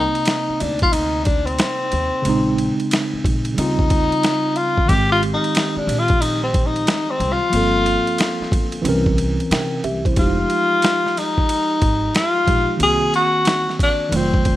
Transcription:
Already playing: C3 A#3 C4 D#4
0.15 ride
0.25 snare, hi-hat pedal, ride
0.49 muted upright bass stroke
0.60 D2 D4, ride
0.79 F4, kick, ride
0.93 D#4, ride
1.25 D4, kick, ride
1.46 C4, ride
1.58 snare, hi-hat pedal, ride
1.92 D#2, ride
2.22 A#1 C#3 G#3, ride
2.27 C4 D#4
2.58 ride
2.80 ride
2.91 snare, hi-hat pedal, ride
3.14 muted upright bass stroke
3.24 A#1, kick, ride
3.45 ride
3.54 D#2 C#3 G3, ride
3.58 C4 D#4 F4
3.79 kick
3.90 kick, ride
4.12 ride
4.23 snare, hi-hat pedal, ride
4.56 F4, ride
4.78 kick
4.86 G#1 D#3 G#3 G4, kick, ride
4.91 C4 G4
5.12 F4
5.23 ride
5.34 D#4
5.44 ride
5.55 snare, hi-hat pedal, ride
5.76 D4, muted upright bass stroke
5.87 A#1, ride
5.99 F4
6.08 kick, ride
6.21 D#4, ride
6.43 C4
6.54 kick, ride
6.66 D#4
6.76 ride
6.87 snare, hi-hat pedal, ride
7.10 C4
7.20 C2, ride
7.33 F4
7.50 G1 F3 A#3, ride
7.55 C4 A4
7.86 ride
8.07 ride
8.18 snare, hi-hat pedal, ride
8.40 muted upright bass stroke, snare
8.52 G1, kick, ride
8.72 ride
8.82 C2 E3 C4, ride
8.86 C#4 A#4
9.06 kick
9.18 ride
9.40 ride
9.51 C3 A#4 G5, snare, hi-hat pedal, ride
9.84 C2 G4 E5, ride
10.05 E4 C5, kick, ride
10.14 F1 F3 G#3, kick, ride
10.19 D#4 F4 G4
10.50 ride
10.82 snare, hi-hat pedal, ride
11.06 snare
11.17 D#4, snare, ride
11.38 kick
11.49 ride
11.82 G#1, kick, ride
12.15 F4, snare, hi-hat pedal, ride
12.46 A#1 F3 G#3 D#4 G4, kick, ride
12.77 C2 D#3 A#3, ride
12.82 C4 F#4 G#4
13.14 F#4, ride
13.45 snare, hi-hat pedal, ride
13.69 snare
13.79 D4, kick, ride
14.09 F1 D#3 F#3, ride
14.14 A3 C4 F4
14.34 kick
14.45 kick, ride

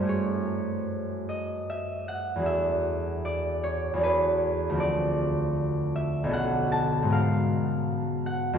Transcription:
Already playing: A4 C5 D5 F5 G5
0.00 F#2 A3
0.05 E4 G#4
0.09 C#5
1.29 D#5
1.70 E5
2.08 F#5
2.36 E2 F#3
2.41 D4 A4
2.46 E5
3.25 D5
3.64 C#5
3.94 E2 F#3
3.98 D4 A4
4.04 B4
4.70 D2 F3
4.75 C4 A4
4.80 D5
5.96 E5
6.24 B1 D3
6.29 C#4 A4
6.33 F#5
6.72 A5
7.03 G#2 F#3
7.08 B3 A#4
7.12 F5
8.26 F#5
8.53 F2

